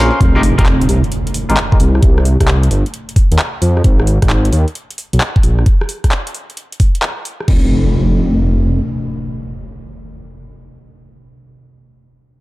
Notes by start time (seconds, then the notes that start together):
Already playing: A#1 C#4 G#4 A#4 C5 F5
0.21 F1, kick, closed hi-hat, impact
0.35 G#3 D#4 F4 G4 A#4, cross-stick
0.43 open hi-hat
0.58 F1 G#3 D#4 F4 G4 A#4, kick, cross-stick, closed hi-hat
0.66 clap
0.81 closed hi-hat
0.89 C2, open hi-hat
1.04 closed hi-hat
1.12 closed hi-hat
1.27 closed hi-hat
1.34 open hi-hat
1.49 G#1 G#3 D#4 F4 G4 A#4, closed hi-hat
1.57 clap
1.72 G#3 D#4 F4 G4 A#4, kick
1.80 C2, open hi-hat
1.95 cross-stick
2.03 C2, kick, closed hi-hat
2.18 cross-stick
2.25 open hi-hat
2.40 C2, kick, cross-stick, closed hi-hat
2.48 clap
2.63 closed hi-hat
2.71 G1, open hi-hat
2.86 closed hi-hat
2.94 closed hi-hat
3.09 closed hi-hat
3.16 kick, open hi-hat
3.31 D#2, closed hi-hat
3.39 clap
3.62 F2, open hi-hat
3.77 cross-stick
3.84 G#1, kick, closed hi-hat
4.00 cross-stick
4.07 open hi-hat
4.22 G#1, kick, cross-stick, closed hi-hat
4.30 clap
4.45 closed hi-hat
4.52 D#2, open hi-hat
4.68 closed hi-hat
4.75 closed hi-hat
4.91 closed hi-hat
4.98 open hi-hat
5.13 B1, closed hi-hat
5.21 clap
5.36 kick
5.43 A#1, open hi-hat
5.59 cross-stick
5.66 kick, closed hi-hat
5.81 cross-stick
5.89 open hi-hat
6.04 kick, cross-stick, closed hi-hat
6.12 clap
6.27 closed hi-hat
6.34 open hi-hat
6.50 closed hi-hat
6.57 closed hi-hat
6.72 closed hi-hat
6.80 kick, open hi-hat
6.95 closed hi-hat
7.03 clap
7.25 open hi-hat
7.40 cross-stick
7.48 F1, kick, crash, impact